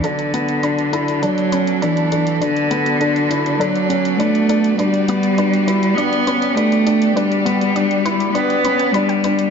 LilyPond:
<<
  \new Staff \with { instrumentName = "Synth arpeggio sound" } { \time 4/4 \key b \minor \tempo 4 = 101 a'16 r16 a'16 r16 b''16 r16 a'16 r16 a'16 r16 b''16 r16 a'16 r16 a'16 r16 | b''16 r16 a'16 r16 a'16 r16 b''16 r16 a'16 r16 a'16 r16 b''16 r16 a'16 r16 | b'16 r16 d'''16 r16 b'16 r16 b'16 r16 d'''16 r16 b'16 r16 b'16 r16 d'''16 r16 | b'16 r16 b'16 r16 d'''16 r16 b'16 r16 b'16 r16 b''16 fis''16 b''16 g''16 b'16 r16 | }
  \new Staff \with { instrumentName = "String section" } { \time 4/4 \key b \minor << { <b fis' d''>1~ | <b fis' d''>1~ | <b fis' d''>1~ | <b fis' d''>1 | } \\ { a'1~ | a'1 | g'1~ | g'1 | } >> }
  \new Staff \with { instrumentName = "Felt piano" } { \time 4/4 \key b \minor d'8 b8 d'8 e'8 d'8 cis'8 d'8 d'8 | d'8 b8 d'8 e'8 d'8 cis'8 d'8 d'8 | d'8 b8 d'8 e'8 d'8 cis'8 d'8 d'8 | d'8 b8 d'8 e'8 d'8 cis'8 d'8 d'8 | }
  \new Staff \with { instrumentName = "Cello" } { \clef bass \time 4/4 \key b \minor d2 fis4 e4 | d2 fis4 a4 | g2 b4 a4 | g2 b4 g4 | }
  \new Staff \with { instrumentName = "Analog synth bass" } { \clef bass \time 4/4 \key b \minor b,,1~ | b,,1 | g,,1~ | g,,1 | }
  \new DrumStaff \with { instrumentName = "Drums" } \drummode { \time 4/4 hh16 hh16 hh16 hh16 hh16 hh16 hh16 hh16 hh16 hh16 hh16 hh16 hh16 hh16 hh16 hh16 | hh16 hh16 hh16 hh16 hh16 hh16 hh16 hh16 hh16 hh16 hh16 hh16 hh16 hh16 hh16 hh16 | hh16 hh16 hh16 hh16 hh16 hh16 hh16 hh16 hh16 hh16 hh16 hh16 hh16 hh16 hh16 hh16 | hh16 hh16 hh16 hh16 hh16 hh16 hh16 hh16 hh16 hh16 hh16 hh16 hh16 hh16 hh16 hh16 | }
>>